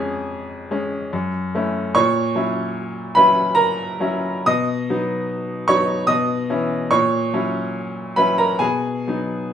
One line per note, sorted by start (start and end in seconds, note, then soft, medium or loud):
0.00 1.15 F2 medium
0.00 0.67 G#3 soft
0.00 0.67 C#4 soft
0.00 1.08 G#4 medium
0.00 1.12 G#5 medium
0.71 1.09 G#3 soft
0.71 1.09 C#4 medium
1.13 1.53 F#2 medium
1.55 1.92 A3 soft
1.55 1.92 C#4 soft
1.55 1.92 E4 soft
1.95 2.34 A#2 medium
1.95 3.12 C#5 medium
1.95 3.15 C#6 loud
2.35 3.12 F#3 soft
2.35 3.12 C#4 soft
2.35 3.12 E4 soft
3.15 3.97 F#3 soft
3.15 3.97 C#4 soft
3.15 3.97 E4 medium
3.15 3.54 B4 medium
3.15 3.56 B5 loud
3.55 4.42 A#4 medium
3.55 4.46 A#5 loud
4.00 4.42 F#3 soft
4.00 4.43 C#4 soft
4.00 4.43 E4 soft
4.46 4.87 B2 medium
4.46 5.65 D#5 medium
4.46 5.68 D#6 loud
4.90 5.65 F#3 soft
4.90 5.65 B3 soft
4.90 5.65 D#4 soft
5.68 6.05 F#3 soft
5.68 6.05 B3 medium
5.68 6.05 D#4 medium
5.68 6.06 C#5 medium
5.68 6.08 C#6 loud
6.07 6.48 B2 medium
6.07 6.88 D#5 medium
6.07 6.91 D#6 loud
6.50 6.88 E3 soft
6.50 6.88 C#4 soft
6.50 6.88 E4 soft
6.91 7.32 A#2 medium
6.91 8.14 C#5 medium
6.91 8.17 C#6 medium
7.34 8.14 F#3 soft
7.34 8.14 C#4 soft
7.34 8.14 E4 soft
8.16 8.57 F#3 soft
8.16 8.57 C#4 soft
8.16 8.58 E4 medium
8.16 8.38 B4 medium
8.16 8.39 B5 medium
8.38 8.60 A#4 medium
8.38 8.61 A#5 medium
8.59 9.06 B2 medium
8.59 9.53 G#4 medium
8.59 9.53 G#5 medium
9.07 9.53 F#3 soft
9.07 9.53 B3 soft
9.07 9.53 D#4 soft